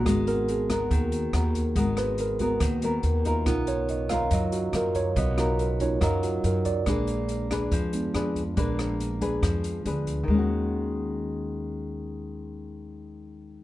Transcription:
<<
  \new Staff \with { instrumentName = "Tine electric piano" } { \time 4/4 \key ees \minor \tempo 4 = 141 << { r8 bes'8 aes'8 r2 r8 | r8 ces''8 bes'8 r2 r8 | ais'8 cis''8 dis''8 eis''8 dis''8 fis'8 ais'8 cis''8 | dis''8 fis'8 ais'8 cis''8 dis''8 fis'8 ais'8 d''8~ |
d''2 r2 | r1 | r1 | r1 | } \\ { <ces' ges'>1 | r4. <ces' ges'>8 r2 | <cis' dis' eis'>1 | r4. <cis' dis' eis'>8 r2 |
<aes d'>2~ <aes d'>8 <aes ces' d'>8 r4 | <aes d'>8 r2. r8 | r1 | r1 | } >> }
  \new Staff \with { instrumentName = "Nylon-string guitar" } { \time 4/4 \key ees \minor << { <ces' ges' bes'>4. <ces' ges' bes'>4. <ces' ges' bes'>8 r8 | <ces' ges' bes'>4 r8 <ces' ges' bes'>4 <ces' ges' bes'>4 <ees' f' bes'>8~ | <ees' f' bes'>4. <dis' eis' ais'>4. <dis' eis' ais'>4 | r8 <dis' eis' ais'>4. <dis' eis' ais'>2 |
<d' aes' ces''>4. <d' aes' ces''>4. <d' aes' ces''>8 r8 | <d' aes' ces''>4. <d' aes' ces''>4. <d' aes' ces''>4 | <ees aes des' ges'>1~ | <ees aes des' ges'>1 | } \\ { aes2 ees2 | aes2 ees2 | b2 fis2 | b2 fis2 |
bes2 f2 | bes2 f2 | r1 | r1 | } >> }
  \new Staff \with { instrumentName = "Upright bass" } { \clef bass \time 4/4 \key ees \minor aes,,2 ees,4 ees,4 | aes,,2 ees,4 ees,4 | b,,2 fis,4 fis,4 | b,,2 fis,4 fis,4 |
bes,,2 f,4 f,4 | bes,,2 f,4 d,4 | ees,1~ | ees,1 | }
  \new DrumStaff \with { instrumentName = "Drums" } \drummode { \time 4/4 <hh bd ss>8 hh8 hh8 <hh bd ss>8 <hh bd>8 hh8 <hh ss>8 <hh bd>8 | <hh bd>8 <hh ss>8 hh8 <hh bd>8 <hh bd ss>8 hh8 hh8 <hh bd>8 | <hh bd ss>8 hh8 hh8 <hh bd ss>8 <hh bd>8 hh8 <hh ss>8 <hh bd>8 | <hh bd>8 <hh ss>8 hh8 <hh bd>8 <hh bd ss>8 hh8 hh8 <hh bd>8 |
<hh bd ss>8 hh8 hh8 <hh bd ss>8 <hh bd>8 hh8 <hh ss>8 <hh bd>8 | <hh bd>8 <hh ss>8 hh8 <hh bd>8 <hh bd ss>8 hh8 hh8 <hh bd>8 | r4 r4 r4 r4 | r4 r4 r4 r4 | }
>>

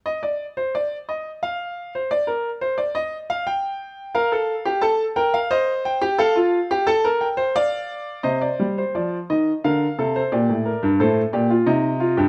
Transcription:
<<
  \new Staff \with { instrumentName = "Grand piano" } { \time 3/4 \key c \minor \tempo 4 = 88 << { ees''16 d''8 c''16 d''8 ees''8 f''8. c''16 | d''16 bes'8 c''16 d''16 ees''8 f''16 g''4 | f''4 a''8 g''16 f''16 ees''8 g''8 | f''4 a''8 g''8 f''4 |
ees''16 d''8 c''16 d''8 ees''8 f''8. c''16 | d''4 c''8 d''8 ees''4 | } \\ { r2. | r2. | bes'16 a'8 g'16 a'8 bes'8 c''8. g'16 | a'16 f'8 g'16 a'16 bes'8 c''16 d''4 |
c''2 bes'8 a'8 | g'8 bes'8 a'8 g'16 f'16 ees'8 f'16 g'16 | } >> }
  \new Staff \with { instrumentName = "Grand piano" } { \clef bass \time 3/4 \key c \minor r2. | r2. | r2. | r2. |
c8 g8 f8 ees8 d8 c8 | bes,16 a,8 g,16 a,8 bes,8 c8. g,16 | }
>>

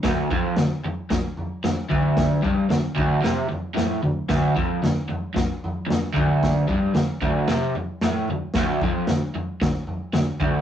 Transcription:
<<
  \new Staff \with { instrumentName = "Overdriven electric guitar" } { \clef bass \time 4/4 \key c \lydian \tempo 4 = 113 d,8 f,8 d,8 r8 d,8 r8 d,8 d,8~ | d,8 g,8 d,8 d,8 c8 r8 a,8 d,8 | d,8 f,8 d,8 r8 d,8 r8 d,8 d,8~ | d,8 g,8 d,8 d,8 c8 r8 a,8 d,8 |
d,8 f,8 d,8 r8 d,8 r8 d,8 d,8 | }
  \new DrumStaff \with { instrumentName = "Drums" } \drummode { \time 4/4 <bd sn tomfh>8 <bd tomfh>8 <sn tomfh>8 tomfh8 <bd sn tomfh>8 tomfh8 <sn tomfh>8 <bd tomfh>8 | <bd sn tomfh>8 <bd tomfh>8 <sn tomfh>8 <bd tomfh>8 <sn tomfh>8 tomfh8 <sn tomfh>8 tomfh8 | <bd sn tomfh>8 <bd tomfh>8 <sn tomfh>8 tomfh8 <bd sn tomfh>8 tomfh8 <sn tomfh>8 <bd tomfh>8 | <bd sn tomfh>8 <bd tomfh>8 <sn tomfh>8 <bd tomfh>8 <sn tomfh>8 tomfh8 <sn tomfh>8 tomfh8 |
<bd sn tomfh>8 <bd tomfh>8 <sn tomfh>8 tomfh8 <bd sn tomfh>8 tomfh8 <sn tomfh>8 <bd tomfh>8 | }
>>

